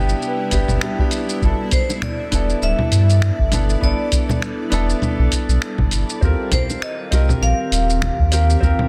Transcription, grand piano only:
0, 0, Header, 1, 2, 480
1, 0, Start_track
1, 0, Key_signature, 1, "major"
1, 0, Tempo, 600000
1, 1136, Time_signature, 4, 2, 24, 8
1, 7107, End_track
2, 0, Start_track
2, 0, Title_t, "Grand piano"
2, 0, Program_c, 0, 0
2, 0, Control_c, 0, 64, 127
2, 0, Note_on_c, 0, 59, 98
2, 0, Note_on_c, 0, 62, 88
2, 0, Note_on_c, 0, 64, 88
2, 0, Note_on_c, 0, 67, 111
2, 394, Note_off_c, 0, 59, 0
2, 396, Note_off_c, 0, 62, 0
2, 397, Note_off_c, 0, 64, 0
2, 400, Note_off_c, 0, 67, 0
2, 411, Note_on_c, 0, 59, 89
2, 415, Note_on_c, 0, 62, 84
2, 417, Note_on_c, 0, 64, 84
2, 424, Note_on_c, 0, 67, 95
2, 629, Note_off_c, 0, 59, 0
2, 631, Note_off_c, 0, 62, 0
2, 632, Note_off_c, 0, 64, 0
2, 635, Note_off_c, 0, 67, 0
2, 651, Note_on_c, 0, 59, 96
2, 656, Note_on_c, 0, 62, 83
2, 663, Note_on_c, 0, 64, 80
2, 665, Note_on_c, 0, 67, 94
2, 757, Note_off_c, 0, 59, 0
2, 759, Note_off_c, 0, 62, 0
2, 763, Note_off_c, 0, 64, 0
2, 764, Note_off_c, 0, 67, 0
2, 787, Note_on_c, 0, 59, 94
2, 792, Note_on_c, 0, 62, 87
2, 796, Note_on_c, 0, 64, 87
2, 803, Note_on_c, 0, 67, 107
2, 1109, Note_off_c, 0, 59, 0
2, 1112, Note_off_c, 0, 62, 0
2, 1113, Note_off_c, 0, 64, 0
2, 1117, Note_off_c, 0, 67, 0
2, 1129, Note_on_c, 0, 47, 74
2, 1141, Note_on_c, 0, 62, 71
2, 1145, Control_c, 0, 64, 0
2, 1150, Note_on_c, 0, 64, 68
2, 1159, Note_on_c, 0, 69, 89
2, 1281, Control_c, 0, 64, 127
2, 1828, Note_off_c, 0, 47, 0
2, 1833, Note_off_c, 0, 62, 0
2, 1838, Note_off_c, 0, 64, 0
2, 1843, Note_off_c, 0, 69, 0
2, 1850, Note_on_c, 0, 59, 84
2, 1856, Note_on_c, 0, 62, 74
2, 1867, Note_on_c, 0, 64, 75
2, 1879, Note_on_c, 0, 69, 92
2, 2788, Note_off_c, 0, 59, 0
2, 2791, Note_off_c, 0, 62, 0
2, 2797, Note_off_c, 0, 64, 0
2, 2803, Note_off_c, 0, 69, 0
2, 2814, Note_on_c, 0, 59, 84
2, 2821, Note_on_c, 0, 62, 76
2, 2827, Note_on_c, 0, 64, 78
2, 2832, Note_on_c, 0, 69, 90
2, 3030, Note_off_c, 0, 59, 0
2, 3034, Note_off_c, 0, 62, 0
2, 3037, Note_off_c, 0, 64, 0
2, 3039, Note_off_c, 0, 69, 0
2, 3045, Note_on_c, 0, 59, 90
2, 3056, Note_on_c, 0, 62, 77
2, 3064, Note_on_c, 0, 64, 78
2, 3074, Note_on_c, 0, 69, 95
2, 3746, Note_off_c, 0, 59, 0
2, 3751, Note_off_c, 0, 62, 0
2, 3755, Note_off_c, 0, 64, 0
2, 3760, Note_off_c, 0, 69, 0
2, 3761, Note_on_c, 0, 59, 97
2, 3771, Note_on_c, 0, 62, 88
2, 3783, Note_on_c, 0, 64, 95
2, 3789, Note_on_c, 0, 69, 105
2, 4943, Note_off_c, 0, 59, 0
2, 4948, Note_off_c, 0, 62, 0
2, 4955, Note_off_c, 0, 64, 0
2, 4958, Note_off_c, 0, 69, 0
2, 4968, Note_on_c, 0, 60, 82
2, 4980, Note_on_c, 0, 65, 78
2, 4986, Control_c, 0, 64, 0
2, 4989, Note_on_c, 0, 67, 74
2, 4998, Note_on_c, 0, 70, 85
2, 5134, Control_c, 0, 64, 127
2, 5667, Note_off_c, 0, 60, 0
2, 5673, Note_off_c, 0, 65, 0
2, 5678, Note_off_c, 0, 67, 0
2, 5682, Note_off_c, 0, 70, 0
2, 5687, Note_on_c, 0, 60, 84
2, 5697, Note_on_c, 0, 65, 78
2, 5702, Note_on_c, 0, 67, 76
2, 5716, Note_on_c, 0, 70, 93
2, 6626, Note_off_c, 0, 60, 0
2, 6631, Note_off_c, 0, 65, 0
2, 6634, Note_off_c, 0, 67, 0
2, 6641, Note_off_c, 0, 70, 0
2, 6653, Note_on_c, 0, 60, 82
2, 6659, Note_on_c, 0, 65, 80
2, 6662, Note_on_c, 0, 67, 76
2, 6667, Note_on_c, 0, 70, 91
2, 6869, Note_off_c, 0, 60, 0
2, 6872, Note_off_c, 0, 65, 0
2, 6874, Note_off_c, 0, 67, 0
2, 6877, Note_off_c, 0, 70, 0
2, 6882, Note_on_c, 0, 60, 91
2, 6891, Note_on_c, 0, 65, 81
2, 6899, Note_on_c, 0, 67, 84
2, 6911, Note_on_c, 0, 70, 95
2, 7107, Note_off_c, 0, 60, 0
2, 7107, Note_off_c, 0, 65, 0
2, 7107, Note_off_c, 0, 67, 0
2, 7107, Note_off_c, 0, 70, 0
2, 7107, End_track
0, 0, End_of_file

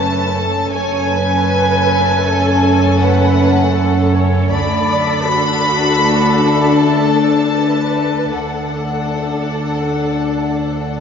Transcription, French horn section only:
0, 0, Header, 1, 2, 480
1, 0, Start_track
1, 0, Tempo, 759494
1, 466, Time_signature, 5, 2, 24, 8
1, 6953, End_track
2, 0, Start_track
2, 0, Title_t, "French horn section"
2, 0, Program_c, 0, 60
2, 0, Note_on_c, 0, 57, 73
2, 0, Note_on_c, 0, 61, 70
2, 439, Note_off_c, 0, 57, 0
2, 439, Note_off_c, 0, 61, 0
2, 465, Note_on_c, 0, 57, 78
2, 465, Note_on_c, 0, 61, 86
2, 2761, Note_off_c, 0, 57, 0
2, 2761, Note_off_c, 0, 61, 0
2, 2869, Note_on_c, 0, 57, 88
2, 2869, Note_on_c, 0, 62, 78
2, 5242, Note_off_c, 0, 57, 0
2, 5242, Note_off_c, 0, 62, 0
2, 5264, Note_on_c, 0, 57, 57
2, 5264, Note_on_c, 0, 62, 62
2, 6953, Note_off_c, 0, 57, 0
2, 6953, Note_off_c, 0, 62, 0
2, 6953, End_track
0, 0, End_of_file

